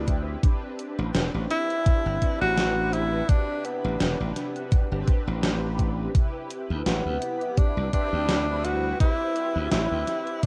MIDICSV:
0, 0, Header, 1, 6, 480
1, 0, Start_track
1, 0, Tempo, 714286
1, 292, Time_signature, 4, 2, 24, 8
1, 7030, End_track
2, 0, Start_track
2, 0, Title_t, "Analog polysynth"
2, 0, Program_c, 0, 90
2, 0, Note_on_c, 0, 60, 93
2, 0, Note_on_c, 0, 64, 91
2, 0, Note_on_c, 0, 67, 91
2, 0, Note_on_c, 0, 71, 108
2, 262, Note_off_c, 0, 60, 0
2, 264, Note_off_c, 0, 64, 0
2, 268, Note_off_c, 0, 67, 0
2, 271, Note_off_c, 0, 71, 0
2, 282, Note_on_c, 0, 60, 80
2, 287, Note_on_c, 0, 62, 73
2, 295, Note_on_c, 0, 67, 72
2, 301, Note_on_c, 0, 71, 91
2, 1461, Note_off_c, 0, 60, 0
2, 1463, Note_off_c, 0, 62, 0
2, 1467, Note_off_c, 0, 67, 0
2, 1470, Note_off_c, 0, 71, 0
2, 1487, Note_on_c, 0, 60, 97
2, 1490, Note_on_c, 0, 62, 90
2, 1494, Note_on_c, 0, 55, 92
2, 1497, Note_on_c, 0, 71, 106
2, 1830, Note_off_c, 0, 60, 0
2, 1831, Note_off_c, 0, 62, 0
2, 1833, Note_off_c, 0, 55, 0
2, 1834, Note_off_c, 0, 71, 0
2, 1859, Note_on_c, 0, 60, 85
2, 1862, Note_on_c, 0, 62, 78
2, 1865, Note_on_c, 0, 67, 79
2, 1869, Note_on_c, 0, 71, 99
2, 2184, Note_off_c, 0, 60, 0
2, 2185, Note_off_c, 0, 62, 0
2, 2186, Note_off_c, 0, 67, 0
2, 2189, Note_off_c, 0, 71, 0
2, 2203, Note_on_c, 0, 48, 85
2, 2210, Note_on_c, 0, 62, 76
2, 2216, Note_on_c, 0, 67, 76
2, 2223, Note_on_c, 0, 71, 93
2, 3268, Note_off_c, 0, 48, 0
2, 3271, Note_off_c, 0, 62, 0
2, 3274, Note_off_c, 0, 67, 0
2, 3277, Note_off_c, 0, 71, 0
2, 3293, Note_on_c, 0, 60, 97
2, 3301, Note_on_c, 0, 62, 89
2, 3306, Note_on_c, 0, 67, 92
2, 3313, Note_on_c, 0, 71, 113
2, 4100, Note_off_c, 0, 60, 0
2, 4104, Note_off_c, 0, 62, 0
2, 4107, Note_off_c, 0, 67, 0
2, 4110, Note_off_c, 0, 71, 0
2, 4121, Note_on_c, 0, 48, 80
2, 4128, Note_on_c, 0, 64, 74
2, 4135, Note_on_c, 0, 67, 74
2, 4143, Note_on_c, 0, 71, 87
2, 5300, Note_off_c, 0, 48, 0
2, 5304, Note_off_c, 0, 64, 0
2, 5307, Note_off_c, 0, 67, 0
2, 5311, Note_off_c, 0, 71, 0
2, 5326, Note_on_c, 0, 60, 98
2, 5330, Note_on_c, 0, 64, 92
2, 5333, Note_on_c, 0, 67, 93
2, 5336, Note_on_c, 0, 71, 108
2, 5669, Note_off_c, 0, 60, 0
2, 5671, Note_off_c, 0, 64, 0
2, 5672, Note_off_c, 0, 67, 0
2, 5674, Note_off_c, 0, 71, 0
2, 5699, Note_on_c, 0, 60, 90
2, 5702, Note_on_c, 0, 64, 81
2, 5706, Note_on_c, 0, 55, 82
2, 5709, Note_on_c, 0, 71, 99
2, 6024, Note_off_c, 0, 60, 0
2, 6025, Note_off_c, 0, 64, 0
2, 6027, Note_off_c, 0, 55, 0
2, 6029, Note_off_c, 0, 71, 0
2, 6041, Note_on_c, 0, 60, 83
2, 6047, Note_on_c, 0, 64, 77
2, 6054, Note_on_c, 0, 67, 77
2, 6062, Note_on_c, 0, 71, 93
2, 7030, Note_off_c, 0, 60, 0
2, 7030, Note_off_c, 0, 64, 0
2, 7030, Note_off_c, 0, 67, 0
2, 7030, Note_off_c, 0, 71, 0
2, 7030, End_track
3, 0, Start_track
3, 0, Title_t, "Tenor saxophone"
3, 0, Program_c, 1, 66
3, 0, Note_on_c, 1, 62, 86
3, 159, Note_off_c, 1, 62, 0
3, 1013, Note_on_c, 1, 64, 111
3, 1597, Note_off_c, 1, 64, 0
3, 1625, Note_on_c, 1, 66, 112
3, 1973, Note_on_c, 1, 64, 104
3, 1983, Note_off_c, 1, 66, 0
3, 2214, Note_on_c, 1, 62, 106
3, 2224, Note_off_c, 1, 64, 0
3, 2454, Note_on_c, 1, 59, 87
3, 2464, Note_off_c, 1, 62, 0
3, 2933, Note_off_c, 1, 59, 0
3, 4617, Note_on_c, 1, 59, 92
3, 5095, Note_on_c, 1, 62, 102
3, 5105, Note_off_c, 1, 59, 0
3, 5331, Note_off_c, 1, 62, 0
3, 5335, Note_on_c, 1, 62, 110
3, 5813, Note_on_c, 1, 66, 112
3, 5823, Note_off_c, 1, 62, 0
3, 6048, Note_off_c, 1, 66, 0
3, 6052, Note_on_c, 1, 64, 113
3, 6505, Note_off_c, 1, 64, 0
3, 6532, Note_on_c, 1, 64, 106
3, 7021, Note_off_c, 1, 64, 0
3, 7030, End_track
4, 0, Start_track
4, 0, Title_t, "Slap bass"
4, 0, Program_c, 2, 36
4, 0, Note_on_c, 2, 38, 93
4, 237, Note_off_c, 2, 38, 0
4, 662, Note_on_c, 2, 33, 98
4, 738, Note_off_c, 2, 33, 0
4, 770, Note_on_c, 2, 28, 103
4, 862, Note_off_c, 2, 28, 0
4, 902, Note_on_c, 2, 33, 95
4, 978, Note_off_c, 2, 33, 0
4, 1383, Note_on_c, 2, 31, 81
4, 1458, Note_off_c, 2, 31, 0
4, 1623, Note_on_c, 2, 33, 94
4, 2158, Note_off_c, 2, 33, 0
4, 2584, Note_on_c, 2, 33, 99
4, 2659, Note_off_c, 2, 33, 0
4, 2694, Note_on_c, 2, 28, 105
4, 2784, Note_off_c, 2, 28, 0
4, 2825, Note_on_c, 2, 33, 91
4, 2899, Note_off_c, 2, 33, 0
4, 3304, Note_on_c, 2, 31, 81
4, 3379, Note_off_c, 2, 31, 0
4, 3544, Note_on_c, 2, 33, 91
4, 4079, Note_off_c, 2, 33, 0
4, 4504, Note_on_c, 2, 38, 100
4, 4578, Note_off_c, 2, 38, 0
4, 4611, Note_on_c, 2, 33, 112
4, 4702, Note_off_c, 2, 33, 0
4, 4742, Note_on_c, 2, 38, 87
4, 4817, Note_off_c, 2, 38, 0
4, 5221, Note_on_c, 2, 36, 80
4, 5297, Note_off_c, 2, 36, 0
4, 5462, Note_on_c, 2, 38, 94
4, 5998, Note_off_c, 2, 38, 0
4, 6423, Note_on_c, 2, 38, 100
4, 6498, Note_off_c, 2, 38, 0
4, 6532, Note_on_c, 2, 33, 106
4, 6623, Note_off_c, 2, 33, 0
4, 6663, Note_on_c, 2, 38, 91
4, 6738, Note_off_c, 2, 38, 0
4, 7030, End_track
5, 0, Start_track
5, 0, Title_t, "Muted slap bass strokes"
5, 1251, Note_on_c, 9, 29, 45
5, 1318, Note_off_c, 9, 29, 0
5, 5091, Note_on_c, 9, 29, 45
5, 5158, Note_off_c, 9, 29, 0
5, 7030, End_track
6, 0, Start_track
6, 0, Title_t, "Drums"
6, 51, Note_on_c, 9, 36, 63
6, 51, Note_on_c, 9, 42, 71
6, 118, Note_off_c, 9, 36, 0
6, 119, Note_off_c, 9, 42, 0
6, 291, Note_on_c, 9, 36, 125
6, 292, Note_on_c, 9, 42, 79
6, 358, Note_off_c, 9, 36, 0
6, 359, Note_off_c, 9, 42, 0
6, 531, Note_on_c, 9, 42, 68
6, 598, Note_off_c, 9, 42, 0
6, 770, Note_on_c, 9, 38, 124
6, 770, Note_on_c, 9, 42, 84
6, 837, Note_off_c, 9, 38, 0
6, 837, Note_off_c, 9, 42, 0
6, 1011, Note_on_c, 9, 42, 66
6, 1078, Note_off_c, 9, 42, 0
6, 1144, Note_on_c, 9, 42, 41
6, 1211, Note_off_c, 9, 42, 0
6, 1250, Note_on_c, 9, 42, 81
6, 1251, Note_on_c, 9, 36, 122
6, 1318, Note_off_c, 9, 36, 0
6, 1318, Note_off_c, 9, 42, 0
6, 1491, Note_on_c, 9, 36, 64
6, 1491, Note_on_c, 9, 42, 71
6, 1558, Note_off_c, 9, 36, 0
6, 1558, Note_off_c, 9, 42, 0
6, 1731, Note_on_c, 9, 38, 127
6, 1731, Note_on_c, 9, 42, 85
6, 1798, Note_off_c, 9, 38, 0
6, 1798, Note_off_c, 9, 42, 0
6, 1971, Note_on_c, 9, 42, 70
6, 2038, Note_off_c, 9, 42, 0
6, 2210, Note_on_c, 9, 42, 77
6, 2211, Note_on_c, 9, 36, 124
6, 2277, Note_off_c, 9, 42, 0
6, 2279, Note_off_c, 9, 36, 0
6, 2451, Note_on_c, 9, 42, 65
6, 2518, Note_off_c, 9, 42, 0
6, 2691, Note_on_c, 9, 38, 121
6, 2691, Note_on_c, 9, 42, 81
6, 2758, Note_off_c, 9, 38, 0
6, 2758, Note_off_c, 9, 42, 0
6, 2931, Note_on_c, 9, 38, 39
6, 2931, Note_on_c, 9, 42, 67
6, 2999, Note_off_c, 9, 38, 0
6, 2999, Note_off_c, 9, 42, 0
6, 3064, Note_on_c, 9, 42, 38
6, 3131, Note_off_c, 9, 42, 0
6, 3171, Note_on_c, 9, 42, 78
6, 3172, Note_on_c, 9, 36, 125
6, 3238, Note_off_c, 9, 42, 0
6, 3239, Note_off_c, 9, 36, 0
6, 3411, Note_on_c, 9, 42, 69
6, 3412, Note_on_c, 9, 36, 109
6, 3478, Note_off_c, 9, 42, 0
6, 3479, Note_off_c, 9, 36, 0
6, 3650, Note_on_c, 9, 38, 127
6, 3650, Note_on_c, 9, 42, 78
6, 3717, Note_off_c, 9, 38, 0
6, 3717, Note_off_c, 9, 42, 0
6, 3891, Note_on_c, 9, 36, 63
6, 3891, Note_on_c, 9, 42, 69
6, 3958, Note_off_c, 9, 36, 0
6, 3958, Note_off_c, 9, 42, 0
6, 4131, Note_on_c, 9, 36, 116
6, 4131, Note_on_c, 9, 42, 72
6, 4198, Note_off_c, 9, 42, 0
6, 4199, Note_off_c, 9, 36, 0
6, 4371, Note_on_c, 9, 42, 65
6, 4438, Note_off_c, 9, 42, 0
6, 4611, Note_on_c, 9, 38, 121
6, 4611, Note_on_c, 9, 42, 80
6, 4679, Note_off_c, 9, 38, 0
6, 4679, Note_off_c, 9, 42, 0
6, 4850, Note_on_c, 9, 42, 65
6, 4917, Note_off_c, 9, 42, 0
6, 4981, Note_on_c, 9, 42, 35
6, 5049, Note_off_c, 9, 42, 0
6, 5089, Note_on_c, 9, 42, 81
6, 5091, Note_on_c, 9, 36, 121
6, 5157, Note_off_c, 9, 42, 0
6, 5158, Note_off_c, 9, 36, 0
6, 5330, Note_on_c, 9, 36, 59
6, 5330, Note_on_c, 9, 42, 64
6, 5397, Note_off_c, 9, 42, 0
6, 5398, Note_off_c, 9, 36, 0
6, 5569, Note_on_c, 9, 38, 126
6, 5569, Note_on_c, 9, 42, 76
6, 5636, Note_off_c, 9, 38, 0
6, 5636, Note_off_c, 9, 42, 0
6, 5810, Note_on_c, 9, 42, 66
6, 5877, Note_off_c, 9, 42, 0
6, 6050, Note_on_c, 9, 36, 113
6, 6050, Note_on_c, 9, 42, 74
6, 6117, Note_off_c, 9, 36, 0
6, 6117, Note_off_c, 9, 42, 0
6, 6288, Note_on_c, 9, 42, 64
6, 6356, Note_off_c, 9, 42, 0
6, 6529, Note_on_c, 9, 38, 121
6, 6529, Note_on_c, 9, 42, 78
6, 6596, Note_off_c, 9, 38, 0
6, 6596, Note_off_c, 9, 42, 0
6, 6770, Note_on_c, 9, 38, 37
6, 6770, Note_on_c, 9, 42, 62
6, 6837, Note_off_c, 9, 38, 0
6, 6837, Note_off_c, 9, 42, 0
6, 6901, Note_on_c, 9, 42, 36
6, 6968, Note_off_c, 9, 42, 0
6, 7009, Note_on_c, 9, 42, 78
6, 7030, Note_off_c, 9, 42, 0
6, 7030, End_track
0, 0, End_of_file